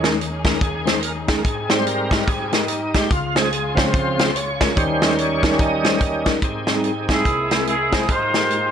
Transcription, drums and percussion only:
0.04 snare loud
0.04 closed hi-hat medium
0.21 closed hi-hat medium
0.45 kick medium
0.45 snare loud
0.45 closed hi-hat medium
0.61 kick loud
0.61 closed hi-hat medium
0.87 snare medium
0.87 closed hi-hat medium
1.03 closed hi-hat medium
1.28 kick medium
1.28 snare loud
1.28 closed hi-hat medium
1.45 kick loud
1.45 closed hi-hat medium
1.70 snare loud
1.70 closed hi-hat medium
1.87 closed hi-hat medium
2.11 kick medium
2.11 snare loud
2.11 closed hi-hat medium
2.28 kick loud
2.28 closed hi-hat medium
2.52 snare medium
2.52 closed hi-hat medium
2.68 closed hi-hat medium
2.94 kick medium
2.94 snare loud
2.94 closed hi-hat medium
3.11 kick loud
3.11 closed hi-hat medium
3.36 snare loud
3.36 closed hi-hat medium
3.52 closed hi-hat medium
3.77 kick medium
3.77 snare loud
3.77 closed hi-hat medium
3.94 kick loud
3.94 closed hi-hat medium
4.19 snare loud
4.19 closed hi-hat medium
4.36 closed hi-hat medium
4.61 kick medium
4.61 snare loud
4.61 closed hi-hat medium
4.77 kick loud
4.77 closed hi-hat medium
5.02 snare loud
5.02 closed hi-hat medium
5.18 closed hi-hat medium
5.43 kick medium
5.43 snare loud
5.43 closed hi-hat medium
5.59 kick loud
5.59 closed hi-hat medium
5.84 snare loud
5.84 closed hi-hat medium
6.01 kick medium
6.01 closed hi-hat medium
6.26 kick medium
6.26 snare loud
6.26 closed hi-hat medium
6.42 kick loud
6.42 closed hi-hat medium
6.67 snare medium
6.67 closed hi-hat medium
6.84 closed hi-hat medium
7.09 kick medium
7.09 snare medium
7.09 closed hi-hat medium
7.25 kick medium
7.25 closed hi-hat medium
7.51 snare medium
7.51 closed hi-hat medium
7.67 closed hi-hat medium
7.92 kick medium
7.92 snare loud
7.92 closed hi-hat medium
8.09 kick medium
8.09 closed hi-hat medium
8.34 snare medium
8.34 closed hi-hat medium
8.50 closed hi-hat medium

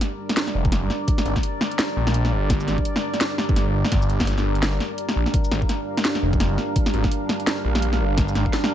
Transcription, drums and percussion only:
0.01 snare medium
0.01 closed hi-hat medium
0.29 snare medium
0.29 closed hi-hat soft
0.37 snare loud
0.37 closed hi-hat medium
0.47 snare medium
0.47 shaker soft
0.65 kick loud
0.65 shaker soft
0.72 snare medium
0.72 closed hi-hat medium
0.90 snare medium
1.08 kick loud
1.08 closed hi-hat medium
1.18 snare medium
1.18 shaker medium
1.26 closed hi-hat soft
1.36 kick medium
1.36 snare soft
1.43 closed hi-hat medium
1.61 snare medium
1.71 closed hi-hat soft
1.79 snare loud
1.79 snare medium
1.79 closed hi-hat medium
1.79 shaker soft
2.07 snare medium
2.14 closed hi-hat medium
2.25 snare medium
2.50 kick loud
2.50 snare medium
2.50 closed hi-hat medium
2.60 shaker medium
2.68 snare soft
2.68 closed hi-hat soft
2.78 kick medium
2.85 closed hi-hat medium
2.96 snare medium
3.14 snare soft
3.14 closed hi-hat soft
3.21 snare loud
3.21 closed hi-hat medium
3.31 shaker soft
3.38 snare medium
3.49 kick loud
3.49 shaker soft
3.56 snare medium
3.56 closed hi-hat medium
3.85 snare medium
3.92 kick loud
3.92 snare soft
3.92 closed hi-hat medium
4.02 shaker medium
4.10 closed hi-hat soft
4.20 kick medium
4.20 snare medium
4.25 snare soft
4.27 snare soft
4.27 closed hi-hat medium
4.31 snare soft
4.33 snare soft
4.38 snare soft
4.55 closed hi-hat soft
4.63 snare loud
4.63 snare medium
4.63 closed hi-hat medium
4.63 shaker soft
4.80 snare medium
4.98 closed hi-hat medium
5.09 snare medium
5.26 snare soft
5.34 kick loud
5.34 closed hi-hat medium
5.44 shaker medium
5.51 snare medium
5.51 closed hi-hat soft
5.62 kick medium
5.69 snare medium
5.69 closed hi-hat medium
5.97 snare medium
5.97 closed hi-hat soft
6.05 snare loud
6.05 closed hi-hat medium
6.15 snare medium
6.15 shaker soft
6.33 kick loud
6.33 shaker soft
6.40 snare medium
6.40 closed hi-hat medium
6.58 snare medium
6.76 kick loud
6.76 closed hi-hat medium
6.86 snare medium
6.86 shaker medium
6.94 closed hi-hat soft
7.04 kick medium
7.04 snare medium
7.12 closed hi-hat medium
7.29 snare medium
7.40 closed hi-hat soft
7.47 snare loud
7.47 snare medium
7.47 closed hi-hat medium
7.47 shaker soft
7.75 snare medium
7.82 closed hi-hat medium
7.93 snare medium
8.18 kick loud
8.18 snare medium
8.18 closed hi-hat medium
8.28 shaker medium
8.35 snare medium
8.35 closed hi-hat soft
8.46 kick medium
8.53 snare medium
8.53 closed hi-hat medium
8.64 snare medium

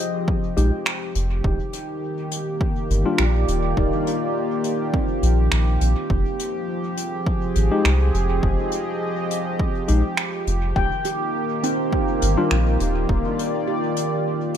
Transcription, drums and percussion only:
0.28 kick loud
0.57 closed hi-hat medium
0.86 finger snap loud
1.15 closed hi-hat medium
1.44 kick loud
1.73 closed hi-hat medium
2.31 closed hi-hat medium
2.61 kick loud
2.90 closed hi-hat medium
3.18 finger snap loud
3.48 closed hi-hat medium
3.77 kick loud
4.07 closed hi-hat medium
4.64 closed hi-hat medium
4.94 kick loud
5.23 closed hi-hat medium
5.52 finger snap loud
5.81 closed hi-hat medium
6.10 kick loud
6.39 closed hi-hat medium
6.97 closed hi-hat medium
7.26 kick loud
7.55 closed hi-hat medium
7.85 finger snap medium
8.14 closed hi-hat medium
8.43 kick loud
8.72 closed hi-hat medium
9.31 closed hi-hat medium
9.60 kick loud
9.88 closed hi-hat medium
10.17 finger snap medium
10.47 closed hi-hat medium
10.76 kick loud
11.04 closed hi-hat medium
11.63 closed hi-hat medium
11.93 kick loud
12.22 closed hi-hat medium
12.51 finger snap medium
12.80 closed hi-hat medium
13.09 kick loud
13.39 closed hi-hat medium
13.96 closed hi-hat medium

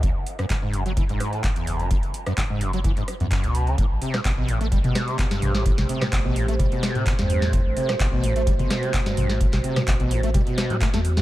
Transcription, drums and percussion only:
0.03 kick loud
0.03 closed hi-hat medium
0.27 open hi-hat loud
0.39 cross-stick medium
0.39 closed hi-hat soft
0.50 kick loud
0.50 clap loud
0.50 closed hi-hat medium
0.73 open hi-hat loud
0.86 closed hi-hat soft
0.97 kick loud
0.97 closed hi-hat medium
1.09 closed hi-hat soft
1.20 cross-stick medium
1.20 open hi-hat loud
1.33 closed hi-hat soft
1.44 kick loud
1.44 clap loud
1.44 closed hi-hat medium
1.56 closed hi-hat soft
1.67 open hi-hat loud
1.80 closed hi-hat soft
1.91 kick loud
1.91 closed hi-hat medium
2.03 closed hi-hat soft
2.14 open hi-hat loud
2.26 cross-stick medium
2.26 closed hi-hat soft
2.37 kick loud
2.37 clap loud
2.37 closed hi-hat medium
2.61 open hi-hat loud
2.73 closed hi-hat soft
2.84 kick loud
2.84 closed hi-hat medium
2.97 closed hi-hat soft
3.08 cross-stick medium
3.08 open hi-hat loud
3.20 closed hi-hat soft
3.31 kick loud
3.31 clap loud
3.31 closed hi-hat medium
3.44 closed hi-hat soft
3.55 open hi-hat medium
3.67 closed hi-hat soft
3.78 kick loud
3.78 closed hi-hat medium
4.02 open hi-hat loud
4.14 cross-stick medium
4.14 snare medium
4.14 closed hi-hat soft
4.25 kick loud
4.25 clap loud
4.25 closed hi-hat medium
4.48 open hi-hat loud
4.61 closed hi-hat soft
4.72 kick loud
4.72 closed hi-hat medium
4.84 closed hi-hat soft
4.84 mid tom medium
4.95 cross-stick medium
4.95 snare medium
4.95 open hi-hat loud
5.08 closed hi-hat soft
5.19 kick medium
5.19 clap loud
5.19 closed hi-hat medium
5.31 snare medium
5.31 closed hi-hat soft
5.42 open hi-hat medium
5.42 mid tom medium
5.55 snare medium
5.55 closed hi-hat soft
5.66 kick loud
5.66 closed hi-hat medium
5.78 snare medium
5.78 closed hi-hat soft
5.78 mid tom medium
5.89 open hi-hat loud
6.01 cross-stick medium
6.01 snare medium
6.01 closed hi-hat soft
6.01 mid tom medium
6.12 kick loud
6.12 clap loud
6.12 closed hi-hat medium
6.36 open hi-hat loud
6.48 closed hi-hat soft
6.59 kick loud
6.59 closed hi-hat medium
6.59 mid tom medium
6.72 closed hi-hat soft
6.83 cross-stick medium
6.83 snare medium
6.83 open hi-hat loud
6.95 closed hi-hat soft
7.06 kick loud
7.06 clap loud
7.06 closed hi-hat medium
7.19 snare medium
7.19 closed hi-hat soft
7.30 open hi-hat medium
7.42 snare medium
7.42 closed hi-hat soft
7.53 kick loud
7.53 closed hi-hat medium
7.77 open hi-hat loud
7.89 cross-stick medium
7.89 snare medium
7.89 closed hi-hat soft
8.00 kick medium
8.00 clap loud
8.00 closed hi-hat medium
8.24 open hi-hat loud
8.36 closed hi-hat medium
8.47 kick loud
8.47 closed hi-hat medium
8.59 closed hi-hat soft
8.59 mid tom medium
8.70 cross-stick medium
8.70 snare medium
8.70 open hi-hat loud
8.83 closed hi-hat soft
8.94 kick medium
8.94 clap loud
8.94 closed hi-hat medium
9.06 snare medium
9.06 closed hi-hat medium
9.17 open hi-hat medium
9.17 mid tom medium
9.30 snare medium
9.30 closed hi-hat soft
9.40 kick loud
9.40 closed hi-hat medium
9.53 snare medium
9.53 clap soft
9.53 closed hi-hat soft
9.53 mid tom medium
9.64 open hi-hat loud
9.76 cross-stick medium
9.76 snare medium
9.76 closed hi-hat soft
9.76 mid tom medium
9.87 kick loud
9.87 clap loud
9.87 closed hi-hat medium
10.00 closed hi-hat soft
10.11 open hi-hat loud
10.23 closed hi-hat medium
10.34 kick loud
10.34 closed hi-hat medium
10.34 mid tom medium
10.47 closed hi-hat soft
10.58 cross-stick medium
10.58 snare medium
10.58 open hi-hat loud
10.70 closed hi-hat soft
10.81 kick loud
10.81 clap loud
10.81 closed hi-hat medium
10.94 snare medium
10.94 closed hi-hat medium
11.05 open hi-hat loud
11.17 snare medium
11.17 closed hi-hat soft

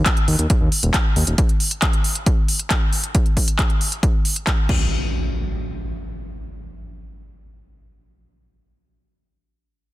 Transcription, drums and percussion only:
0.06 kick loud
0.06 clap loud
0.06 closed hi-hat medium
0.17 closed hi-hat soft
0.28 open hi-hat loud
0.39 closed hi-hat medium
0.50 kick loud
0.50 closed hi-hat medium
0.72 open hi-hat loud
0.83 closed hi-hat medium
0.94 kick loud
0.94 clap loud
0.94 closed hi-hat medium
1.16 open hi-hat medium
1.27 closed hi-hat medium
1.38 kick loud
1.38 closed hi-hat medium
1.49 closed hi-hat soft
1.60 open hi-hat loud
1.71 closed hi-hat medium
1.82 kick loud
1.82 clap loud
1.82 closed hi-hat medium
1.93 closed hi-hat soft
2.04 open hi-hat loud
2.15 closed hi-hat medium
2.26 kick loud
2.26 closed hi-hat medium
2.48 open hi-hat loud
2.59 closed hi-hat medium
2.70 kick loud
2.70 clap loud
2.70 closed hi-hat medium
2.93 open hi-hat medium
3.04 closed hi-hat medium
3.15 kick loud
3.15 closed hi-hat medium
3.26 closed hi-hat soft
3.37 kick medium
3.37 open hi-hat loud
3.48 closed hi-hat soft
3.59 kick loud
3.59 clap loud
3.59 closed hi-hat medium
3.70 closed hi-hat soft
3.81 open hi-hat medium
3.92 closed hi-hat soft
4.03 kick loud
4.03 closed hi-hat medium
4.25 open hi-hat loud
4.36 closed hi-hat soft
4.47 kick loud
4.47 clap loud
4.47 closed hi-hat medium
4.69 kick loud
4.69 crash medium

